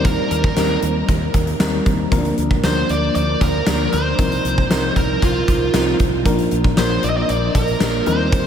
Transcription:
Already playing: D#2 G3 C4 D#4 A#4
0.05 A#4, kick, closed hi-hat
0.31 D#2 A#4, closed hi-hat
0.44 kick
0.56 D#2 G3 C4 D#4 A#4, snare, closed hi-hat
0.82 D#2, closed hi-hat
1.09 D#2, kick, closed hi-hat
1.34 D#2, kick, closed hi-hat
1.47 closed hi-hat
1.59 D#2 G3 C4 D#4 A#4, snare, closed hi-hat
1.86 D#2, kick, closed hi-hat
2.11 D2 F3 A#3 C4 A#4, kick, closed hi-hat
2.18 D4
2.25 closed hi-hat
2.38 D2, closed hi-hat
2.51 kick
2.63 D2 F3 A#3 D4 A#4 C5, snare, closed hi-hat
2.89 D2 D5, closed hi-hat
3.15 D2 D5, closed hi-hat
3.41 D2 A#4, kick, closed hi-hat
3.67 D2 F3 A#3 D4 A#4, snare, closed hi-hat
3.93 D2 C5, closed hi-hat
4.18 C2 F3 C4 D#4 A#4, kick, closed hi-hat
4.32 closed hi-hat
4.44 C2, closed hi-hat
4.58 kick
4.70 C2 F3 C4 D#4 A#4, snare, closed hi-hat
4.96 C2 A#4, kick, closed hi-hat
5.22 C2 F4, kick, closed hi-hat
5.48 C2, kick, closed hi-hat
5.73 C2 F3 C4 D#4 A#4, snare, closed hi-hat
6.00 C2, kick, closed hi-hat
6.25 A#1 F3 A#3 D4 A#4, kick, closed hi-hat
6.39 closed hi-hat
6.51 A#1, closed hi-hat
6.64 kick
6.76 A#1 F3 A#3 D4 A#4 C5, snare, closed hi-hat
7.03 A#1 D5, closed hi-hat
7.09 D#5
7.17 D5
7.22 D#5
7.29 A#1 D5, closed hi-hat
7.55 A#1 A#4, kick, closed hi-hat
7.68 closed hi-hat
7.80 A#1 F3 A#3 D4 A#4, snare, closed hi-hat
8.06 D#2 G3 C4 D#4 A#4 C5, closed hi-hat
8.32 kick, closed hi-hat

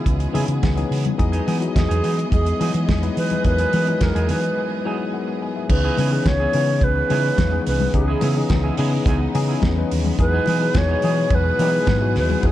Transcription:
Already playing: C#3 E3 G#3 B3 C#4 D#4 E4 F#4 G#4 D#5
0.06 C#2, muted clean electric guitar stroke, kick, closed hi-hat, muted conga
0.20 muted clean electric guitar stroke, closed hi-hat
0.33 C#3 E3 B3 C#4 D#4 E4 G#4, open hi-hat, muted conga, low conga
0.47 C#3, muted clean electric guitar stroke, closed hi-hat
0.62 C#2, muted clean electric guitar stroke, kick, snare, closed hi-hat, high conga
0.76 E3 B3 C#4 D#4 G#4, muted clean electric guitar stroke, closed hi-hat
0.91 C#3, open hi-hat
1.04 muted clean electric guitar stroke, closed hi-hat, high conga
1.18 E2 E3 F#3 G#3 B3 D#4 E4 G#4 D#5, muted clean electric guitar stroke, kick, closed hi-hat
1.32 B3 D#4 G#4, closed hi-hat
1.47 E3 B3 D#4 G#4, open hi-hat, muted conga
1.60 F#3 B3 D#4 E4 F#4, muted clean electric guitar stroke, closed hi-hat
1.68 G#4
1.75 E2 G#4, muted clean electric guitar stroke, kick, snare, closed hi-hat, high conga
1.89 E2 B3 D#4 G#4, closed hi-hat
2.03 E3 B3 D#4 G#4, open hi-hat
2.17 muted clean electric guitar stroke, closed hi-hat
2.32 E2 G#4, muted clean electric guitar stroke, kick, closed hi-hat, muted conga
2.46 muted clean electric guitar stroke, closed hi-hat
2.59 E3 F#3 B3 D#4 E4 G#4, open hi-hat, muted conga
2.74 E3, muted clean electric guitar stroke, closed hi-hat
2.89 E2, muted clean electric guitar stroke, kick, snare, closed hi-hat, high conga
3.01 F#3 B3 D#4 E4 B4, muted clean electric guitar stroke, closed hi-hat
3.17 E3 B4, open hi-hat
3.30 muted clean electric guitar stroke, closed hi-hat, high conga
3.44 E2 F#3 B3 D#4 E4 A#4 B4, muted clean electric guitar stroke, kick, closed hi-hat, muted conga
3.58 B3 D#4 G#4, closed hi-hat
3.73 E3 B3 D#4 G#4, open hi-hat, muted conga
3.87 F#3 B3 D#4 E4 G#4, muted clean electric guitar stroke, closed hi-hat
4.01 E2 A#4, muted clean electric guitar stroke, kick, snare, closed hi-hat, high conga
4.15 E2 B3 D#4 G#4, closed hi-hat
4.29 E3 B3 D#4 G#4 B4, open hi-hat
4.42 muted clean electric guitar stroke, closed hi-hat
4.57 muted clean electric guitar stroke
4.71 muted clean electric guitar stroke
4.85 F#3 B3 D#4 E4 G#4
5.00 muted clean electric guitar stroke
5.14 A#4 F#5, muted clean electric guitar stroke
5.28 muted clean electric guitar stroke
5.42 B4 G#5
5.56 G#4 E5, muted clean electric guitar stroke
5.69 C#2 C#3 E3 G#3 B3 C#4 D#4 G#4 B4, muted clean electric guitar stroke, kick, crash, muted conga
5.84 B3 E4 G#4
5.97 C#3 B3 E4 G#4, open hi-hat, muted conga
6.11 E3 B3 C#4 D#4 G#4, muted clean electric guitar stroke
6.26 C#2 C#5, muted clean electric guitar stroke, kick, snare, closed hi-hat, high conga
6.40 B3 E4 G#4
6.52 C#3 E3 B3 C#4 D#4 E4 G#4, open hi-hat
6.57 G#4
6.69 muted clean electric guitar stroke
6.81 C#2 B4, muted clean electric guitar stroke, kick, closed hi-hat, muted conga
6.96 muted clean electric guitar stroke
7.09 C#3 E3 B3 C#4 D#4 E4 G#4, open hi-hat, muted conga
7.24 muted clean electric guitar stroke
7.38 E2, muted clean electric guitar stroke, kick, snare, closed hi-hat, high conga
7.51 E3 B3 C#4 D#4 G#4, muted clean electric guitar stroke
7.66 C2 B4, open hi-hat
7.80 muted clean electric guitar stroke, high conga
7.93 C#2 E3 B3 C#4 D#4 G#4, muted clean electric guitar stroke, kick, closed hi-hat, muted conga
8.08 B3 E4 G#4
8.21 C#3 B3 E4 G#4, open hi-hat, muted conga
8.36 E3 B3 C#4 D#4 G#4, muted clean electric guitar stroke
8.50 C#2, muted clean electric guitar stroke, kick, snare, closed hi-hat, high conga
8.64 B3 E4 G#4
8.77 C#3 E3 B3 C#4 D#4 E4 G#4, open hi-hat
8.93 muted clean electric guitar stroke
9.06 C#2 B3 E4 G#4, kick, closed hi-hat, muted conga
9.21 muted clean electric guitar stroke
9.34 C#3 E3 B3 C#4 D#4 G#4, muted clean electric guitar stroke, open hi-hat, muted conga
9.49 B3 E4 G#4
9.62 E2, kick, snare, closed hi-hat, high conga
9.76 E3 B3 C#4 D#4 B4, muted clean electric guitar stroke
9.91 D#2, open hi-hat
10.04 muted clean electric guitar stroke, high conga
10.18 E2 B2 F#3 B3 D#4 E4 G#4 B4, muted clean electric guitar stroke, kick, closed hi-hat, muted conga
10.33 B3 D#4 G#4
10.46 E3 B3 D#4 G#4, open hi-hat, muted conga
10.60 F#3 B3 D#4 E4 G#4, muted clean electric guitar stroke
10.74 E2 C#5, muted clean electric guitar stroke, kick, snare, closed hi-hat, high conga
10.89 B3 D#4 G#4
11.02 E3 F#3 B3 D#4 E4 G#4, open hi-hat
11.17 muted clean electric guitar stroke
11.30 E2, muted clean electric guitar stroke, kick, closed hi-hat, muted conga
11.35 B4
11.46 muted clean electric guitar stroke
11.59 E3 F#3 B3 D#4 E4 G#4, open hi-hat, muted conga
11.74 muted clean electric guitar stroke
11.87 G#2, muted clean electric guitar stroke, kick, snare, closed hi-hat, high conga
12.01 F#3 B3 D#4 E4 F#4, muted clean electric guitar stroke
12.15 D#2 B4, snare, open hi-hat
12.29 muted clean electric guitar stroke, high conga
12.43 E2 F#3 B3 D#4 E4 G#4, muted clean electric guitar stroke, kick, closed hi-hat

